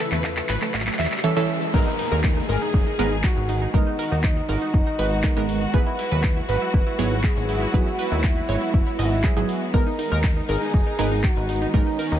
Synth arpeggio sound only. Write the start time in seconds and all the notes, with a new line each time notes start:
0.12 A3
0.24 A3
0.37 A3
0.49 B4
0.62 A3
0.74 A3
0.87 A3
0.99 E5
1.74 A#4
1.87 D#4
1.99 D#4
2.12 A#4
2.24 D#4
2.37 D#4
2.49 A#4
2.62 D#4
2.74 D#4
2.87 D#4
2.99 B4
3.12 D#4
3.24 D#4
3.49 D#4
3.62 D#4
3.74 A#4
3.87 D#4
3.99 A#4
4.12 D#4
4.24 D#4
4.37 D#4
4.49 A#4
4.62 D#4
4.74 D#4
4.87 D#4
4.99 B4
5.74 B4
5.87 E4
5.99 E4
6.12 B4
6.24 E4
6.37 E4
6.49 B4
6.62 E4
6.74 E4
6.87 E4
6.99 C#5
7.12 E4
7.24 E4
7.49 E4
7.62 E4
7.74 B4
7.87 E4
7.99 B4
8.12 E4
8.24 E4
8.37 E4
8.49 C#5
8.62 E4
8.74 E4
8.87 E4
8.99 D#5
9.74 A#4
9.87 D#4
9.99 D#4
10.12 A#4
10.24 D#4
10.37 D#4
10.49 A#4
10.62 D#4
10.74 D#4
10.87 D#4
10.99 B4
11.12 D#4
11.24 D#4
11.49 D#4
11.62 D#4
11.74 A#4
11.87 D#4
11.99 A#4
12.12 D#4